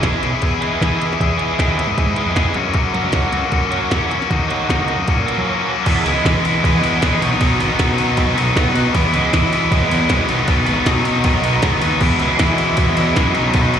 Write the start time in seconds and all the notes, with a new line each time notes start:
Already playing: B1 G#4 E5 D#6
0.03 E3 G#3 B3 E4 G#4, kick, snare, closed hi-hat
0.22 B1 B3 E4 G#4, closed hi-hat
0.42 E2 E3 B3 E4 G#4, kick, closed hi-hat
0.61 E3 G#3 B3 G#4, closed hi-hat
0.81 E3 G#3 B3 E4 G#4, kick, snare, closed hi-hat
1.00 B3 E4 G#4, closed hi-hat
1.13 snare
1.20 E2 E3 B3 E4 G#4, kick, closed hi-hat
1.38 E3 G#3 B3 G#4, closed hi-hat
1.58 E3 G#3 B3 E4 G#4, kick, snare, closed hi-hat
1.67 D#2
1.78 B3 E4 G#4, closed hi-hat
1.87 G#2
1.97 E3 B3 E4 G#4, kick, closed hi-hat
2.06 G#2
2.16 E3 G#3 B3 G#4, closed hi-hat
2.26 F2
2.36 E3 G#3 B3 E4 G#4, kick, snare, closed hi-hat
2.54 F#2 F#3 A#3 C#4 F#4 A#4 F#5 C#6, closed hi-hat
2.73 F#2 F#3 A#3 C#4 F#4, kick, closed hi-hat
2.94 F#2 F#3 A#3 C#4 F#4, closed hi-hat
3.03 C#2
3.12 F#3 A#3 C#4 F#4, kick, snare, closed hi-hat
3.32 C#2 A#3 C#4 F#4, closed hi-hat
3.52 F#2 F#3 A#3 C#4 F#4, kick, closed hi-hat
3.71 F#3 A#3 C#4 F#4, closed hi-hat
3.90 E2 F#3 A#3 C#4 F#4, kick, snare, closed hi-hat
4.10 A#3 C#4 F#4, closed hi-hat
4.22 snare
4.30 D#2 D#3 A#3 D#4 F#4 C#5 F#5 D#6, kick, closed hi-hat
4.48 D#3 A#3 D#4 F#4, closed hi-hat
4.68 D#3 A#3 D#4 F#4, kick, snare, closed hi-hat
4.79 C#2
4.88 A#3 D#4 F#4, closed hi-hat
4.98 F#2
5.08 F#2 F#3 A#3 C#4 F#4 A#4 E6, kick, closed hi-hat
5.17 A#2
5.26 E3 A#3 C#4 F#4, closed hi-hat
5.38 F#3
5.45 E3 F#3 A#3 C#4 F#4
5.66 A#3 C#4 F#4
5.83 E2 E3 G#3, kick, crash, ride
5.88 B3 E4
6.04 C#2 G#3 B3 E4, ride
6.09 G#3
6.25 E3 G#3 B3 E4, kick, snare, ride
6.44 G#3 B3 E4, ride
6.63 E3 G#3 B3 E4, kick, ride
6.74 E2
6.82 E2 E3 G#3 B3 E4, ride
7.02 E2 E3 G#3 B3 E4, kick, snare, ride
7.21 B1 B2 D#3 F#3 B3 D#4, ride
7.41 B1 B2 D#3 F#3 B3 D#4, kick, ride
7.59 G#1 F#3 B3 D#4, ride
7.77 B2 D#3 F#3 B3 D#4, kick, snare, ride
7.97 F#3 B3 D#4, ride
8.16 B2 D#3 F#3 B3 D#4, kick, ride
8.26 B1
8.36 B1 F#3 B3 D#4, ride
8.55 B1 D#3 F#3 B3 D#4, kick, snare, ride
8.74 B2 F#3 B3 D#4, ride
8.93 E2 E3 G#3 B3 E4, kick, ride
9.12 C#2 G#3 B3 E4, ride
9.31 E3 F#3 G#3 B3 E4, kick, snare, ride
9.52 G#3 B3 E4, ride
9.72 E3 G#3 B3 E4, kick, ride
9.82 E2
9.90 E2 F#3 G#3 B3 E4, ride
10.09 C2 E3 G#3 B3 E4, kick, snare, ride
10.29 B1 B2 D#3 F#3 B3 D#4, ride
10.48 B1 B2 D#3 F#3 B3 D#4, kick, ride
10.66 G#1 F#3 B3 D#4, ride
10.86 B2 D#3 F#3 B3 D#4, kick, snare, ride
11.04 F#3 B3 D#4, ride
11.24 B2 D#3 F#3 B3 D#4, kick, ride
11.33 B1
11.42 B1 F#3 B3 D#4, ride
11.62 C#2 D#3 F#3 B3 D#4, kick, snare, ride
11.81 D#2 F#3 B3 D#4, ride
12.00 E2 E3 G#3 B3 E4 F#4 E5 G#5, kick, crash
12.20 C#2 G#3 B3 E4, ride
12.37 E3 F#3 G#3 B3 E4, kick, snare, ride
12.57 G#3 B3 E4, ride
12.76 E3 G#3 B3 E4, kick, ride
12.88 E2
12.97 E2 F#3 G#3 B3 E4, ride
13.16 F#2 E3 G#3 B3 E4, kick, snare, ride
13.34 B1 B2 D#3 F#3 B3 D#4 D#5 B5, ride
13.54 B1 B2 D#3 F#3 B3 D#4, kick, ride
13.73 G#1 F#3 B3 D#4, ride